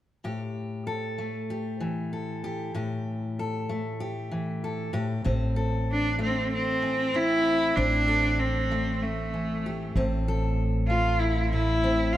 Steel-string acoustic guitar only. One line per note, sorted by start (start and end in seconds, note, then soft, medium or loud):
0.24 2.74 A2 medium
0.24 1.50 G4 soft
0.87 2.12 A4 medium
1.18 2.78 A3 soft
1.50 2.44 G4 soft
1.80 4.31 E3 soft
2.13 2.78 A4 soft
2.44 2.75 G4 medium
2.74 4.91 A2 medium
2.74 3.99 G4 soft
3.39 4.63 A4 soft
3.69 4.91 A3 medium
4.00 4.91 G4 soft
4.31 4.91 E3 soft
4.64 4.91 A4 soft
4.93 5.21 A2 medium
4.93 5.22 G4 medium
5.24 7.75 A2 medium
5.24 7.14 C4 soft
5.56 8.07 A4 medium
6.19 8.71 A3 medium
6.82 7.72 E3 soft
7.14 7.77 C4 soft
7.76 9.91 A2 medium
7.76 9.96 C4 medium
8.08 9.92 A4 medium
8.71 9.92 A3 medium
9.34 9.92 E3 soft
9.66 9.93 G4 soft
9.96 11.52 A2 medium
9.96 11.83 C4 soft
10.28 12.17 A4 medium
10.90 12.17 A3 medium
11.53 12.17 A2 medium
11.84 12.17 C4 soft